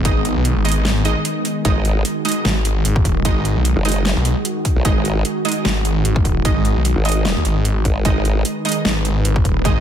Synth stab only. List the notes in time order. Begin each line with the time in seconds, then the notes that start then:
0.05 G#3 D#4 D#5
0.65 G#3 D#4 D#5
1.05 G#3 D#4 D#5
1.65 G#3 D#4 D#5
2.25 G#3 D#4 D#5
3.25 G#3 D#4 D#5
3.85 G#3 D#4 D#5
4.85 G#3 D#4 D#5
5.45 G#3 D#4 D#5
6.45 G#3 D#4 D#5
7.05 G#3 D#4 D#5
8.05 G#3 D#4 D#5
8.65 G#3 D#4 D#5
9.65 G#3 D#4 D#5